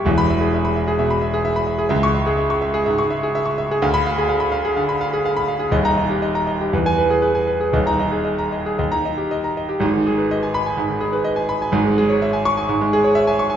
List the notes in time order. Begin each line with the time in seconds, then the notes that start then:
0.05 E1 E2 E5
0.18 B5
0.30 E5
0.41 G#4
0.54 E5
0.65 B5
0.76 E5
0.88 G#4
0.99 B2 E5
1.10 B5
1.22 E5
1.34 G#4
1.45 E5
1.56 B5
1.67 E5
1.79 G#4
1.89 C#2 E5
2.03 C#6
2.15 E5
2.26 G#4
2.37 E5
2.50 C#6
2.62 E5
2.74 G#4
2.86 G#2 E5
2.98 C#6
3.10 E5
3.23 G#4
3.35 E5
3.46 C#6
3.58 E5
3.71 G#4
3.82 D2 F5
3.94 B5
4.07 F5
4.18 G#4
4.29 F5
4.40 B5
4.52 F5
4.65 G#4
4.76 D3 F5
4.89 B5
5.01 F5
5.13 G#4
5.25 F5
5.37 B5
5.48 F5
5.59 G#4
5.71 D#1 D#2 D#5
5.84 D#4 A#5
5.97 D#5
6.10 G4
6.22 D#5
6.35 A#5
6.47 D#5
6.61 G4
6.73 E2 B4
6.86 B3 G#5
6.98 B4
7.10 G#4
7.22 B4
7.35 G#5
7.47 B4
7.61 G#4
7.72 D#1 D#2 D#5
7.86 D#4 A#5
8.00 D#5
8.12 G#4
8.25 D#5
8.38 A#5
8.52 D#5
8.66 G#4
8.79 D#2 D#5
8.91 D#4 A#5
9.05 D#5
9.17 G4
9.31 D#5
9.44 A#5
9.57 D#5
9.69 G4
9.80 G#1 G#2
9.93 D#3
10.06 G#4
10.18 B4
10.31 D#5
10.43 G#5
10.54 B5
10.66 G#5
10.77 G#2
10.89 D#3
11.01 G#4
11.13 B4
11.24 D#5
11.36 G#5
11.49 B5
11.62 G#5
11.72 G#1 G#2
11.85 G#3
11.98 G#4
12.09 C#5
12.22 E5
12.33 G#5
12.45 C#6
12.57 G#5
12.69 G#2
12.81 G#3
12.93 G#4
13.04 C#5
13.15 E5
13.27 G#5
13.39 C#6
13.50 G#5